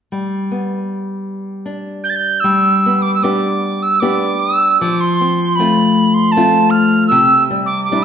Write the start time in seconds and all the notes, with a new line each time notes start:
0.12 G3
0.51 B3
1.66 D4
2.04 G6
2.10 A6
2.16 G6
2.40 G3 E6
2.86 B3
3.02 D6
3.14 E6
3.23 B3 D4 G4 D6
3.82 E6
4.00 B3 D4 G4 D6
4.40 E6
4.80 F3 D6
5.00 C6
5.21 C4
5.56 C4 B5
5.60 A3 F4
6.14 C6
6.32 A5
6.36 A3 C4 F4
6.70 F6
7.08 C3 E6
7.50 G3
7.66 D6
7.85 D6
7.92 G3 D4 E4